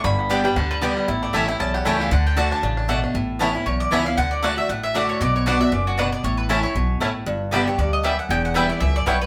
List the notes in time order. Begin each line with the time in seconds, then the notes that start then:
0.04 G1 G2 D3 B5
0.19 B3
0.29 D3 G3 B3 D4 G4 D5 G5
0.44 G3 B3 G4 G5
0.56 D2 D3 D4 F#5
0.71 G3 B4
0.81 D3 G3 B3 G4 D5 G5
0.97 G3
1.08 A1 A2 E4
1.23 A3 D5
1.33 A1 E3 A3 C#4 E4 G4 C#5 E5 A5
1.48 C#4 E4 G5
1.60 B1 E2 C#4 A5
1.74 G4 F#5
1.85 C#2 E3 A3 C#4 E4 C#5 G5 A5
2.00 G4 F5
2.11 D2 D3 D4 F#5
2.27 G5
2.37 D3 A3 D4 F#4 D5 F#5 A5
2.52 D4 A5
2.63 A1 C#3 D4
2.77 D4
2.88 B2 A3 F#4 D5 F#5
3.04 D4
3.14 A1 A2
3.39 E3 A3 B3 C#4 E4 C#5 A5
3.55 C#4 E4
3.66 B1 E2 C#5
3.80 D5
3.91 C#2 E3 A3 B3 C#4 E4 C#5 E5 A5
4.05 C#4 E4 F5
4.17 D2 D3 F#5
4.31 D5
4.43 D3 A3 D4 F#4 C#5 D5 F#5
4.56 D4 F#4 E5
4.69 A1 A2 F#5
4.83 E5
4.94 D3 A3 D4 F#4 D5 F#5
5.09 C#5
5.21 B1 B2 D5
5.36 C#5
5.46 D3 B3 D4 F#4 D5 F#5
5.60 D4 F#4 E5
5.72 F#1 F#2 D5
5.87 F#4
5.97 B2 B3 D4 F#4 B4 D5 F#5
6.12 D5
6.23 A1 A2 C#5
6.37 B4
6.49 E3 A3 C#4 E4 A4 C#5 A5
6.63 C#4 E4 C#5
6.75 B1 B2
7.00 A1 A2 A3 C#4 E4 C#5 A5
7.26 G1 G2
7.51 D3 G3 B3 D4 G4 D5 E5 G5
7.67 B3 G4 C#5
7.78 D2 G2 D5
7.93 D#5
8.03 F#2 G3 B3 D4 G4 D5 E5 G5
8.19 F#5
8.29 E1 E2 G5
8.45 F#5
8.54 E3 G3 B3 E4 B4 E5 G5
8.69 B3 E4 D5
8.80 C#2 F#2 E5
8.96 D5
9.06 B1 G2 G3 B3 E4 B4 C#5 G5
9.21 B4